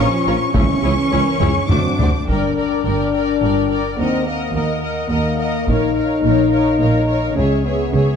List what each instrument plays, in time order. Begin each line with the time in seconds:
Already playing: trombone section F3 C#4, cello section C#4, french horn section F4
0.00 violin section C#5 C#6
0.26 double bass section A#1, tuba A#1, viola section C#4 F4, violin section A#4 C#5
0.54 double bass section C#2, tuba C#2, trombone section E3, cello section C#4, viola section C#4 E4, french horn section E4, violin section G#4 C#5 C#6, taiko
0.82 double bass section C#2, tuba C#2, viola section C#4 E4, french horn section G#4, violin section G#4 C#5
1.10 tuba C#2, double bass section C#2, viola section C#4 E4, violin section G#4 C#5, french horn section A#4
1.40 tuba C#2, double bass section C#2, viola section C#4 E4, french horn section G#4, violin section G#4 C#5, taiko low-mid
1.68 tuba D2, double bass section D2, trombone section F#3 C4, french horn section A3 F#4, viola section A3 D4, cello section D4, violin section F#4 C5 D6, taiko low-mid
1.98 tuba D2, double bass section D2, viola section A3 D4, violin section F#4 C5, taiko low
2.27 double bass section G1, cello section G2, french horn section D4, viola section A#4, violin section D5 G5, taiko
2.56 viola section A#4, violin section D5 G5
2.84 double bass section G1, cello section G2, viola section A#4, violin section D5 G5
3.13 viola section A#4, violin section D5 G5
3.41 double bass section G1, cello section G2, viola section A#4, violin section D5 G5
3.69 viola section A#4, violin section D5 G5
3.97 double bass section D#2, cello section D#2, french horn section C4, viola section A#4, violin section D#5 F#5
4.25 french horn section A#3, viola section A#4, violin section D#5 F#5
4.54 double bass section D#2, cello section D#2, viola section A#4, violin section D#5 F#5
4.82 viola section A#4, violin section D#5 F#5
5.10 cello section D#2, double bass section D#2, french horn section A#3, viola section A#4, violin section D#5 F#5
5.38 viola section A#4, violin section D#5 F#5
5.67 double bass section A#1, cello section A#2, french horn section D#4, viola section A#4, violin section C#5 F5, taiko
5.95 viola section A#4, violin section C#5 F5
6.24 double bass section A#1, cello section A#2, viola section A#4, violin section C#5 F5
6.51 viola section A#4, violin section C#5 F5
6.80 double bass section A#1, cello section A#2, viola section A#4, violin section C#5 F5
7.07 viola section A#4, violin section C#5 F5
7.35 double bass section C#2, cello section C#3, french horn section C#4, viola section G#4, violin section C#5 E5
7.65 french horn section B3, viola section G#4, violin section C#5 E5
7.91 double bass section C#2, cello section C#3, viola section G#4, violin section C#5 E5